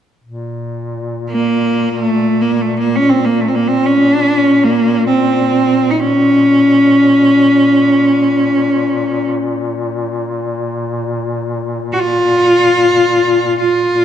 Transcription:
0.24 duduk A#2
1.31 cello A#3
1.89 cello A#3
2.02 cello A3
2.41 cello A#3
2.61 cello A3
2.79 cello A#3
2.96 cello C#4
3.09 cello C4
3.25 cello A#3
3.41 cello A3
3.48 cello C4
3.55 cello A#3
3.68 cello C4
3.86 cello C#4
4.63 cello A#3
5.07 cello C4
5.90 cello D#4
6.01 cello C#4
11.92 cello F#4
12.00 cello F4
13.60 cello F4
13.87 duduk A#2

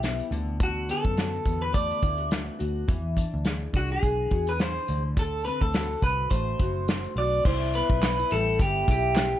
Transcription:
Already playing: picked electric bass B1, steel-string acoustic guitar G3 E4
0.03 steel-string acoustic guitar B3, snare, closed hi-hat
0.20 closed hi-hat
0.31 picked electric bass D2, steel-string acoustic guitar D3, closed hi-hat
0.60 steel-string acoustic guitar D3, clean electric guitar F#4, kick, closed hi-hat
0.89 steel-string acoustic guitar B3, clean electric guitar A4, closed hi-hat
1.05 picked electric bass F#2, kick
1.16 steel-string acoustic guitar F#4, snare, closed hi-hat
1.46 picked electric bass E2, steel-string acoustic guitar B3, kick, closed hi-hat
1.62 clean electric guitar B4
1.74 steel-string acoustic guitar A3, clean electric guitar D5, kick, closed hi-hat
1.91 closed hi-hat
2.02 picked electric bass D2, steel-string acoustic guitar E4, kick, closed hi-hat
2.18 steel-string acoustic guitar F#4
2.31 steel-string acoustic guitar B3, snare, closed hi-hat
2.59 picked electric bass D2, steel-string acoustic guitar F#4, closed hi-hat
2.88 picked electric bass E2, steel-string acoustic guitar E3, kick, closed hi-hat
3.17 steel-string acoustic guitar D4, kick, closed hi-hat
3.34 picked electric bass D2
3.45 steel-string acoustic guitar G#4, snare, closed hi-hat
3.73 picked electric bass C2, steel-string acoustic guitar D4, clean electric guitar F#4, kick, closed hi-hat
3.92 clean electric guitar G#4
4.03 picked electric bass B1, kick, closed hi-hat
4.31 picked electric bass E2, steel-string acoustic guitar F#4, kick, closed hi-hat
4.47 steel-string acoustic guitar G#4, clean electric guitar B4
4.59 steel-string acoustic guitar D4, clean electric guitar C5, snare, closed hi-hat
4.88 picked electric bass D2, steel-string acoustic guitar D3, closed hi-hat
5.17 steel-string acoustic guitar D3, clean electric guitar A4, kick, closed hi-hat
5.45 steel-string acoustic guitar C4, clean electric guitar B4, closed hi-hat
5.61 picked electric bass D2, clean electric guitar A4, kick
5.74 steel-string acoustic guitar F#4, snare, closed hi-hat
6.02 picked electric bass C2, steel-string acoustic guitar C4, clean electric guitar B4, kick, closed hi-hat
6.30 picked electric bass A1, steel-string acoustic guitar A3, clean electric guitar C5, kick, closed hi-hat
6.59 picked electric bass F#1, steel-string acoustic guitar F#4, kick, closed hi-hat
6.88 steel-string acoustic guitar C4, snare, closed hi-hat
7.04 closed hi-hat
7.16 picked electric bass B1, steel-string acoustic guitar F#4, clean electric guitar D5, open hi-hat
7.45 picked electric bass C2, steel-string acoustic guitar E4, clean electric guitar C5, kick, crash
7.74 steel-string acoustic guitar B3, clean electric guitar B4, closed hi-hat
7.90 picked electric bass B1, kick
8.02 steel-string acoustic guitar D4, snare, clap, closed hi-hat
8.19 steel-string acoustic guitar E4
8.31 picked electric bass A1, steel-string acoustic guitar G3, clean electric guitar A4, closed hi-hat
8.59 picked electric bass G1, steel-string acoustic guitar B3, clean electric guitar G4, kick, closed hi-hat
8.88 picked electric bass B1, steel-string acoustic guitar E4, clean electric guitar G4, kick, closed hi-hat
9.16 steel-string acoustic guitar B3, snare, clap, closed hi-hat

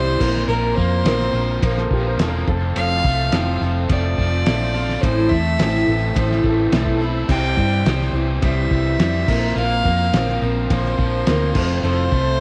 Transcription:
Already playing: fingered electric bass C2, steel-string acoustic guitar C3 G3 C4 E4 G4, overdriven electric guitar E3 G3 C4, tonewheel organ E4 G4 C5, fiddle C5
0.19 fingered electric bass A#1, overdriven electric guitar A#2, steel-string acoustic guitar C4 F4 A#4, tonewheel organ F4 A#4 C5, kick, crash
0.36 snare
0.47 fingered electric bass A#1, overdriven electric guitar A#2, steel-string acoustic guitar A#3 C4 F4 A#4, fiddle A#4
0.75 fingered electric bass F2, overdriven electric guitar A#3, steel-string acoustic guitar F4 A#4, fiddle C5, kick
0.80 steel-string acoustic guitar C4
1.04 fingered electric bass A#1, steel-string acoustic guitar A#3 C4 F4 A#4, overdriven electric guitar C4, snare, ride bell
1.21 snare
1.33 fingered electric bass A#1, overdriven electric guitar F3, steel-string acoustic guitar C4 F4 A#4
1.63 fingered electric bass A#1, steel-string acoustic guitar A#3 C4 F4 A#4, overdriven electric guitar A#3, upright piano C5, kick, ride bell
1.77 upright piano A4, snare
1.91 fingered electric bass A#1, overdriven electric guitar F3, upright piano G4, kick
2.03 upright piano B4
2.07 upright piano C5
2.17 fingered electric bass E1, steel-string acoustic guitar A#3 C4 F4 A#4, upright piano A4, snare, ride bell
2.21 overdriven electric guitar A#3
2.47 fingered electric bass F1, overdriven electric guitar F2, steel-string acoustic guitar C4 F4 A4, tonewheel organ F4 A4 C5, upright piano A4, kick
2.76 fingered electric bass F1, overdriven electric guitar F2, steel-string acoustic guitar F3 C4 F4 A4, fiddle F5, ride bell
3.05 fingered electric bass C2, overdriven electric guitar A3, steel-string acoustic guitar C4 F4 A4, kick
3.32 fingered electric bass F1, steel-string acoustic guitar F3 C4 F4 A4, overdriven electric guitar C4, snare, ride bell
3.61 fingered electric bass F1, overdriven electric guitar F3, steel-string acoustic guitar C4 F4 A4
3.89 fingered electric bass F1, steel-string acoustic guitar F3 C4 F4 A4, overdriven electric guitar A3, fiddle D5, kick, ride bell
4.18 fingered electric bass F1, overdriven electric guitar F3, kick
4.46 fingered electric bass A#1, steel-string acoustic guitar F3 C4 F4 A4, overdriven electric guitar A3, snare, ride bell
4.74 steel-string acoustic guitar C4 F4 A4, overdriven electric guitar F4
4.89 snare
5.01 fingered electric bass A1, steel-string acoustic guitar A2 E3 A3 C4 E4, overdriven electric guitar A2, tonewheel organ E4 A4 C5, fiddle C5, kick, ride bell
5.05 steel-string acoustic guitar A4
5.29 fingered electric bass E2, overdriven electric guitar A3, steel-string acoustic guitar E4 A4, fiddle E5, kick
5.33 steel-string acoustic guitar A3 C4
5.58 fingered electric bass A1, steel-string acoustic guitar A2 E3 A3 C4 E4 A4, overdriven electric guitar C4, snare, ride bell
5.75 snare
5.87 fingered electric bass A1, overdriven electric guitar E3, steel-string acoustic guitar A3 C4 E4 A4
6.14 fingered electric bass A1, steel-string acoustic guitar A3 C4 E4 A4, overdriven electric guitar A3, kick, ride bell
6.19 upright piano C5
6.31 snare
6.44 fingered electric bass A1, overdriven electric guitar E3, upright piano A4, kick
6.72 fingered electric bass B1, steel-string acoustic guitar A2 E3 A3 C4 E4 A4, overdriven electric guitar A3, snare, ride bell
6.86 kick
7.00 steel-string acoustic guitar A3 C4 E4 A4, overdriven electric guitar E4
7.27 fingered electric bass C2, overdriven electric guitar C3, steel-string acoustic guitar C3 G3 C4 E4 C5, tonewheel organ E4 G4 C5, fiddle G5, kick, crash
7.57 fingered electric bass G2, overdriven electric guitar G3, steel-string acoustic guitar C4 E4 C5, kick
7.85 fingered electric bass C2, steel-string acoustic guitar C3 G3 C4 E4 C5, overdriven electric guitar C4, snare, ride bell
8.01 snare
8.13 fingered electric bass C2, overdriven electric guitar E3, steel-string acoustic guitar C4 E4 C5
8.42 fingered electric bass C2, steel-string acoustic guitar G3 C4 E4 C5, overdriven electric guitar G3, fiddle E5, kick, ride bell
8.71 fingered electric bass C2, overdriven electric guitar E3, kick
8.99 fingered electric bass F2, steel-string acoustic guitar C3 G3 C4 E4 C5, overdriven electric guitar G3, snare, ride bell
9.25 fingered electric bass A#1, overdriven electric guitar A#2, tonewheel organ F4 A#4 C5, steel-string acoustic guitar A#4, kick, crash
9.29 steel-string acoustic guitar C4 F4
9.55 fingered electric bass A#1, overdriven electric guitar A#2, steel-string acoustic guitar A#3 C4 F4 A#4, fiddle F5
9.85 fingered electric bass F2, overdriven electric guitar A#3, steel-string acoustic guitar C4 F4 A#4, kick
10.13 fingered electric bass A#1, steel-string acoustic guitar A#3 C4 F4 A#4, overdriven electric guitar C4, snare, ride bell
10.28 snare
10.42 fingered electric bass A#1, overdriven electric guitar F3, steel-string acoustic guitar C4 F4 A#4
10.70 fingered electric bass A#1, overdriven electric guitar A#3, steel-string acoustic guitar A#3 C4 F4 A#4, fiddle C5, kick, ride bell
10.85 snare
10.98 fingered electric bass A#1, overdriven electric guitar F3, kick
11.27 fingered electric bass D2, steel-string acoustic guitar A#3 C4 F4 A#4, overdriven electric guitar A#3, snare, ride bell
11.54 fingered electric bass F1, overdriven electric guitar F2, steel-string acoustic guitar C4 F4 A4, tonewheel organ F4 C5 A5, kick, crash
11.82 fingered electric bass F1, overdriven electric guitar F2, steel-string acoustic guitar F3 C4 F4 A4, fiddle C5
12.11 fingered electric bass C2, overdriven electric guitar A3, steel-string acoustic guitar C4 F4 A4, kick

